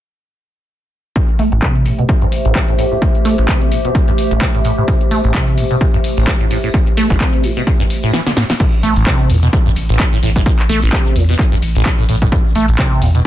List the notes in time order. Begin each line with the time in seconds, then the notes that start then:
1.16 A2 A3, kick, closed hi-hat
1.29 C5, closed hi-hat
1.35 A3 E5, open hi-hat
1.45 G4
1.52 A1, closed hi-hat
1.62 C3, kick, clap, closed hi-hat
1.75 closed hi-hat
1.86 A2, open hi-hat
1.99 B2, closed hi-hat
2.09 C3, kick, closed hi-hat
2.22 G2, closed hi-hat
2.32 open hi-hat
2.45 A1, closed hi-hat
2.55 C3, kick, clap, closed hi-hat
2.68 A2, closed hi-hat
2.79 A2, open hi-hat
2.92 A2
3.02 A2, kick, closed hi-hat
3.15 closed hi-hat
3.25 A3, open hi-hat
3.38 A1, closed hi-hat
3.48 C3, kick, clap, closed hi-hat
3.61 closed hi-hat
3.72 A2, open hi-hat
3.85 B2, closed hi-hat
3.95 C3, kick, closed hi-hat
4.08 G2, closed hi-hat
4.18 open hi-hat
4.31 A1, closed hi-hat
4.41 C3, kick, clap, closed hi-hat
4.54 A2, closed hi-hat
4.65 A2, open hi-hat
4.78 A2
4.88 A2, kick, closed hi-hat, tambourine
5.01 closed hi-hat
5.11 A3, open hi-hat, tambourine
5.24 A1, closed hi-hat, tambourine
5.34 C3, kick, clap, closed hi-hat
5.47 closed hi-hat
5.57 A2, open hi-hat, tambourine
5.71 B2, closed hi-hat, tambourine
5.81 C3, kick, closed hi-hat
5.94 G2, closed hi-hat
6.04 open hi-hat, tambourine
6.17 A1, closed hi-hat, tambourine
6.27 C3, kick, clap, closed hi-hat
6.40 A2, closed hi-hat
6.51 A2, open hi-hat, tambourine
6.64 A2, tambourine
6.74 A2, kick, closed hi-hat
6.87 closed hi-hat
6.97 A3, open hi-hat, tambourine
7.10 A1, kick, closed hi-hat, tambourine
7.20 C3, kick, clap, closed hi-hat, tambourine
7.33 closed hi-hat
7.43 A2, open hi-hat, tambourine
7.57 B2, closed hi-hat, tambourine
7.67 C3, kick, closed hi-hat, tambourine
7.80 G2, closed hi-hat
7.90 open hi-hat, tambourine
8.03 A2, closed hi-hat, tambourine
8.13 E3, snare
8.27 D3, snare
8.37 A2, snare
8.50 E3, snare
8.60 A2, kick, closed hi-hat, crash
8.83 A1 A3, open hi-hat
8.96 A1, closed hi-hat
9.06 C3, kick, clap, closed hi-hat
9.30 E2 A2, open hi-hat
9.43 B2, closed hi-hat
9.53 C3, kick, closed hi-hat
9.66 G2
9.76 A1, open hi-hat
9.89 A1, closed hi-hat
10.00 kick, clap, closed hi-hat
10.13 A2
10.23 A1 A2, open hi-hat
10.36 A2, kick, closed hi-hat
10.46 A2, kick, closed hi-hat
10.59 clap
10.69 A1 A3, open hi-hat
10.82 A1, closed hi-hat
10.93 C3, kick, clap, closed hi-hat
11.16 E2 A2, open hi-hat
11.29 B2, closed hi-hat
11.39 C3, kick, clap, closed hi-hat
11.52 G2
11.62 A1, open hi-hat
11.75 A1, closed hi-hat
11.86 C3, kick, clap, closed hi-hat
11.99 A2
12.09 A1 A2, open hi-hat
12.22 A2, kick, closed hi-hat
12.32 A2, kick, closed hi-hat
12.55 A1 A3, open hi-hat
12.68 A1, closed hi-hat
12.79 C3, kick, clap, closed hi-hat
13.02 E2 A2, open hi-hat
13.15 B2, closed hi-hat